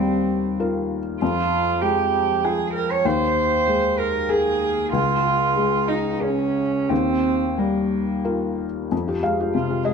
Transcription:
0.00 1.17 D#2 medium
0.00 0.97 G3 soft
0.00 0.59 C4 medium
0.60 1.17 F4 soft
0.60 1.17 A#4 soft
1.22 3.01 F2 medium
1.22 1.83 F4 medium
1.81 2.80 G#3 medium
1.81 2.45 G4 medium
2.44 3.01 F4 soft
2.44 2.73 G#4 medium
2.44 3.01 G5 medium
2.74 2.93 A#4 medium
2.91 3.07 C#5 medium
3.05 4.89 D#2 medium
3.05 3.99 C5 medium
3.67 4.67 G#3 soft
3.98 4.30 A#4 medium
4.29 4.92 G#4 medium
4.29 4.89 G#4 soft
4.29 4.88 A#4 medium
4.93 6.86 C#2 medium
4.93 5.90 F4 loud
5.56 6.62 G#3 medium
5.88 6.23 D#4 medium
6.21 6.90 C#4 medium
6.21 6.86 G#4 soft
6.21 6.86 C#5 soft
6.89 8.88 D#2 medium
6.89 7.60 C4 medium
7.58 8.66 G3 soft
7.58 8.59 A#3 medium
8.25 8.87 F4 soft
8.25 8.87 A#4 soft
8.92 9.07 F2 soft
9.07 9.22 F4 soft
9.07 9.22 G4 soft
9.23 9.49 G#3 soft
9.23 9.82 F5 medium
9.40 9.54 F4 soft
9.40 9.54 G4 soft
9.54 9.80 C3 soft
9.54 9.86 F4 medium
9.70 9.84 F4 soft
9.70 9.85 G4 soft
9.84 9.94 G#3 soft
9.84 9.94 G#4 medium
9.84 9.94 D#5 medium

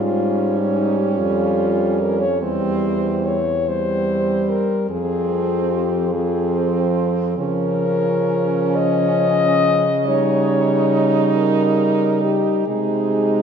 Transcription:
0.00 1.20 G#2 medium
0.00 2.25 G3 medium
0.00 2.38 C#4 medium
0.00 0.59 F4 medium
0.58 0.79 C#4 medium
0.77 1.01 D#4 medium
0.99 1.20 G4 medium
1.18 2.44 F2 medium
1.18 2.02 F4 medium
2.00 2.22 A#4 medium
2.20 2.41 C#5 medium
2.41 4.63 E2 medium
2.41 3.38 G3 medium
2.41 3.38 C4 medium
2.41 3.27 C5 medium
3.26 3.70 C#5 medium
3.67 4.86 G3 medium
3.67 4.86 C4 medium
3.67 4.51 C5 medium
4.50 4.89 A#4 medium
4.90 7.34 F2 medium
4.90 6.10 F3 medium
4.90 6.11 C4 medium
4.90 5.74 G#4 medium
5.72 6.14 G4 medium
6.12 7.36 F3 medium
6.12 7.35 C4 medium
6.12 6.96 G#4 medium
7.37 12.51 C#3 medium
7.37 9.90 F3 medium
7.37 9.91 C#4 medium
7.37 8.78 A#4 medium
8.76 10.09 D#5 loud
10.07 12.64 G3 medium
10.07 12.64 D#4 medium
10.07 11.35 C#5 medium
11.36 12.25 A#4 medium
12.23 12.68 G4 medium
12.67 13.42 C3 medium
12.67 13.42 G#3 medium
12.67 13.42 D#4 medium
12.67 13.42 G#4 medium

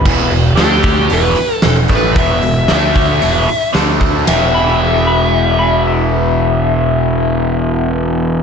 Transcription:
0.05 0.30 E1 medium
0.05 0.30 E2 medium
0.05 0.30 B2 medium
0.05 0.32 E3 medium
0.05 kick medium
0.05 crash medium
0.31 0.56 E1 medium
0.31 0.52 E2 medium
0.31 0.56 B2 medium
0.31 open hi-hat soft
0.56 1.07 D2 medium
0.56 1.09 D3 medium
0.56 1.09 A3 medium
0.56 1.10 D4 medium
0.56 1.13 G4 medium
0.56 snare loud
0.56 open hi-hat medium
0.83 kick medium
0.83 open hi-hat soft
1.10 1.35 E1 medium
1.10 1.35 E2 medium
1.10 1.36 B2 medium
1.10 1.37 E3 medium
1.10 1.55 B4 medium
1.10 open hi-hat medium
1.36 muted overdriven electric guitar stroke medium
1.36 muted picked electric bass stroke soft
1.36 open hi-hat soft
1.55 1.66 A4 medium
1.62 1.89 E1 medium
1.62 1.84 E2 medium
1.62 1.85 B2 medium
1.62 snare loud
1.62 open hi-hat medium
1.68 1.74 A4 medium
1.88 2.14 A1 medium
1.88 2.15 A2 medium
1.88 2.16 E3 medium
1.88 2.16 A3 medium
1.88 kick medium
1.88 open hi-hat soft
1.95 2.17 B4 medium
2.16 2.40 E1 medium
2.16 2.41 E2 medium
2.16 2.42 B2 medium
2.16 2.43 E3 medium
2.16 3.71 E5 medium
2.16 kick loud
2.16 open hi-hat medium
2.42 2.67 E1 medium
2.42 2.63 E2 medium
2.42 2.64 B2 medium
2.42 open hi-hat soft
2.68 3.19 D2 medium
2.68 3.20 D3 medium
2.68 3.21 A3 medium
2.68 3.21 D4 medium
2.68 snare loud
2.68 open hi-hat medium
2.96 kick medium
2.96 open hi-hat soft
3.20 3.47 E1 medium
3.20 3.46 E2 medium
3.20 3.47 B2 medium
3.20 3.47 E3 medium
3.20 open hi-hat medium
3.47 muted overdriven electric guitar stroke medium
3.47 muted picked electric bass stroke soft
3.47 open hi-hat soft
3.73 4.24 D2 medium
3.73 4.26 D3 medium
3.73 4.26 A3 medium
3.73 4.26 D4 medium
3.73 snare medium
3.73 open hi-hat medium
4.01 kick medium
4.01 open hi-hat soft
4.24 8.43 E2 medium
4.24 8.43 B2 medium
4.24 8.43 E5 medium
4.24 snare medium
4.24 ride bell medium
4.28 8.43 E1 medium
4.28 8.43 E3 medium
4.55 4.80 B5 medium
5.07 5.19 B5 medium
5.59 5.85 B5 medium
5.87 8.43 E5 medium

